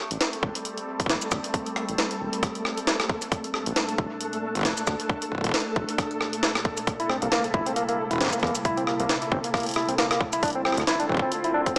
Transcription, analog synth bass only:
0.11 A1
0.43 E1
1.09 E1
1.32 D2
1.89 A1
2.21 E1
3.66 A#1
3.98 F1
4.65 F1
4.87 D2
5.44 A#1
5.76 F1
7.22 C2
7.54 G1
8.21 G1
8.43 E2
9.00 C2
9.32 G1
10.77 D2
11.09 A1

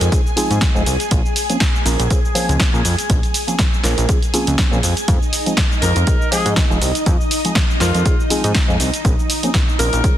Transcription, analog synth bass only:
0.01 F2
0.51 G#2
0.75 F1
0.86 C2
1.11 A#1
1.86 A#1
1.99 A#1
2.49 C#2
2.74 A#2
2.85 F2
3.10 A#1
3.84 A#1
3.98 A#1
4.47 C#2
4.72 A#2
4.83 F2
5.08 F2
5.82 F2
5.96 F2
6.46 G#2
6.70 F1
6.82 C2
7.06 F2
7.81 F2
7.95 F2
8.44 G#2
8.69 F1
8.80 C2
9.05 A#1
9.79 A#1
9.93 A#1

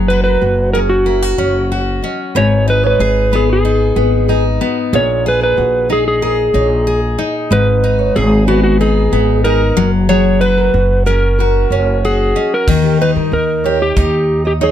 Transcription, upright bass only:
Already playing: F#1
0.42 F#1
1.38 F#1
2.35 G#1
3.00 G#1
3.96 G#1
4.93 A#1
5.58 A#1
6.54 A#1
7.51 G#1
8.16 G#1
9.12 G#1
9.77 F#1
10.74 F#1
11.70 F#1
12.67 D#2
13.16 G2
13.32 D#2
13.97 D#2

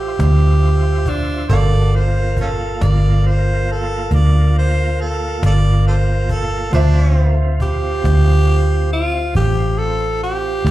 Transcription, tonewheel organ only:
Already playing: F4 C5 E5
1.50 A#3 F#4 A4
1.94 A#3 F4
6.71 C4 F4

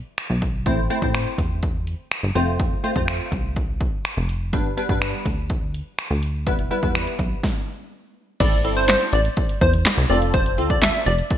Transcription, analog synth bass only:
0.30 B1
0.66 A1
1.02 A2
1.38 E2
2.23 G1
2.35 F1
2.96 F2
3.32 C2
4.17 F1
4.53 G1
4.89 G2
5.25 D2
6.10 D2
6.47 E1
6.83 E2
7.19 B1
8.40 A1
8.65 G1
9.13 A1
9.61 E2
9.98 C2
10.10 F1
10.58 D2
11.06 F1

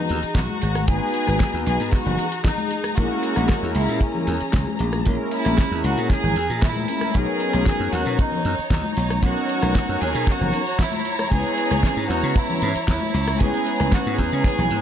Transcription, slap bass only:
0.10 D#2
0.24 muted slap bass stroke
0.35 B1
0.63 G#1
1.28 G#1
1.54 D#2
1.67 B1
1.80 G#2
2.06 F#1
2.98 A#1
3.37 A#1
3.63 E2
3.75 C#2
3.89 A#2
4.28 E2
4.41 muted slap bass stroke
4.54 C#2
4.80 A#1
5.07 A#1
5.46 A#1
5.71 E2
5.84 C#2
5.98 A#2
6.24 G#1
6.36 E2
6.50 A#2
7.15 B1
7.54 B1
7.80 F#2
7.93 D#2
8.06 B2
8.45 F#2
8.59 muted slap bass stroke
8.71 D#2
8.97 B1
9.23 B1
9.63 B1
9.89 F#2
10.02 D#2
10.15 B2
10.41 F#1
11.32 C#2
11.71 C#2
11.97 G#2
12.10 E2
12.23 C#3
12.62 G#2
12.76 muted slap bass stroke
12.88 E2
13.14 C#2
13.41 C#2
13.80 C#2
14.06 G#2
14.18 E2
14.33 C#3
14.59 B1
14.71 G#2

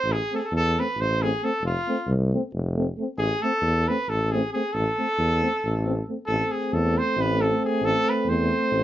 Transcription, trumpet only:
Already playing: C5
0.12 G#4
0.34 G#4 A4
0.45 A4
0.56 A4
0.79 B4
1.01 C5
1.22 G#4
1.44 A4
1.66 F4
3.18 G#4
3.42 A4
3.88 B4
4.09 A4
4.31 G#4
4.53 G#4
4.73 A4
6.26 A4
6.51 G#4
6.74 A4
6.98 C5
7.21 B4
7.41 A4
7.65 G#4
7.85 A4
8.09 B4
8.29 C5

